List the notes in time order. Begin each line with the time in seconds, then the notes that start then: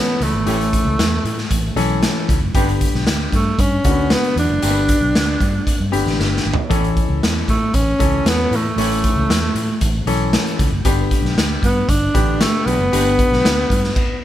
Already playing: E3 B3 C#4 A4
0.20 C#2 E2 A3, closed hi-hat
0.33 G#1
0.46 A1 A2 E3 C#4 G4, closed hi-hat
0.52 A4
0.61 closed hi-hat
0.73 kick, closed hi-hat
0.85 C#2
0.99 E2, snare, closed hi-hat
1.24 A2, closed hi-hat
1.38 snare
1.50 A1, kick, closed hi-hat
1.76 B1 E3 C#4 A4, closed hi-hat
2.02 snare, closed hi-hat
2.28 C#2, kick, closed hi-hat
2.41 F#1
2.54 G1 G2 D3 B3 G4, kick, closed hi-hat
2.69 closed hi-hat
2.81 kick, closed hi-hat
2.94 B1, snare
3.06 D2, snare, closed hi-hat
3.32 G2 A3, kick, closed hi-hat
3.58 G2 C#4, kick, closed hi-hat
3.84 D2 D3 A#3 F#4, kick, closed hi-hat
3.91 B3
4.10 B3, snare, closed hi-hat
4.24 closed hi-hat
4.36 E2 D4, closed hi-hat
4.50 F#1
4.62 G1 G2 D3 A#3 G4, closed hi-hat
4.68 B3
4.88 kick, closed hi-hat
5.01 B1
5.15 D2, snare, closed hi-hat
5.40 G2, kick, closed hi-hat
5.67 kick, closed hi-hat
5.80 G2
5.92 G1 D3 B3 G4, closed hi-hat
6.06 A1, snare
6.19 G1, snare
6.37 snare
6.45 G#1
6.54 floor tom
6.70 A1 A2 E3 C#4 A4, kick, closed hi-hat
6.84 closed hi-hat
6.97 kick, closed hi-hat
7.09 C#2
7.23 E2, snare, closed hi-hat
7.48 A2 A3, kick, closed hi-hat
7.74 A1 C#4, kick, closed hi-hat
7.99 C#2 E3 C#4 A4, kick, closed hi-hat
8.25 E2 B3, snare, closed hi-hat
8.51 E2 A2, closed hi-hat
8.56 A3
8.76 A1 A2 E3 C#4 A4, closed hi-hat
8.91 closed hi-hat
9.04 kick, closed hi-hat
9.16 C#2
9.28 E2, snare, closed hi-hat
9.55 A2, closed hi-hat
9.81 A1, kick, closed hi-hat
10.06 B1 E3 C#4 A4, closed hi-hat
10.33 snare, closed hi-hat
10.47 closed hi-hat
10.59 C#2, kick, closed hi-hat
10.70 F#1
10.85 G1 G2 D3 B3 G4, kick, closed hi-hat
11.11 kick, closed hi-hat
11.22 B1, snare
11.36 D2, snare, closed hi-hat
11.62 G2 B3, kick, closed hi-hat
11.88 G1 D4, kick, closed hi-hat
12.14 A1 D3 B3 G4, kick, closed hi-hat
12.41 A3, snare, closed hi-hat
12.66 B1 E2 B3, closed hi-hat
12.79 F#1
12.92 G1 G2 D3 B3 G4, closed hi-hat
13.19 kick, closed hi-hat
13.32 B1, snare
13.44 D2, snare, closed hi-hat
13.70 G2, kick, closed hi-hat
13.84 snare
13.96 kick, crash